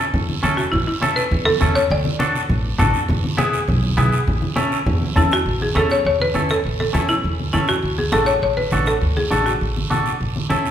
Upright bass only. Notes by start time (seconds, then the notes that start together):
0.14 E2
0.43 E2
0.73 A1
1.31 E2
1.61 E2
1.91 D2
2.49 A1
2.80 A1
3.09 E2
3.68 B1
3.98 B1
4.27 A1
4.86 E2
5.16 E2
5.46 A1
5.76 E2
6.05 E2
6.35 E2
6.65 A1
6.94 E2
7.24 E2
7.54 E2
7.83 D2
8.12 A1
8.42 A1
8.72 A1
9.01 D2
9.31 A1
9.61 A1
9.91 A1
10.20 A1
10.50 E2